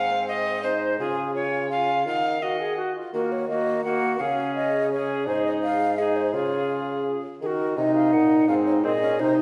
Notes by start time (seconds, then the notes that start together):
Already playing: G#2 C4 F5 G#5
0.28 D#5 F5
0.63 D#4 C5 D#5
0.99 C#3 F4 G#4 G#5
1.35 F4 C#5 G#5
1.71 F4 F5 G#5
2.06 D#3 D#4 F5 F#5
2.42 F#4 D#5 F#5
2.60 G#4
2.77 F#4
2.95 F4
3.13 D#3 A#3 F#4 A#4
3.32 C#5
3.49 A#3 F#4 D#5
3.84 A#3 F#4 F#5
4.20 C#3 C#4 G#4 F5
4.55 D#5
4.91 C#4 G#4 C#5
5.27 G#2 D#4 G#4 C5
5.45 D#5
5.63 F5
5.98 D#4 G#4 D#5
6.16 C5
6.33 C#3 F4 G#4 C#5
7.41 D#3 D#4 G#4 A#4
7.46 F#4
7.77 C3 D#4 D#5
7.95 F5
8.13 A#2 F#5
8.48 G#2 C4 D#4 F5
8.67 C#5
8.84 A#2 C4 G#4 D#5
9.02 C#4
9.19 C3 D#4 C5
9.37 D#4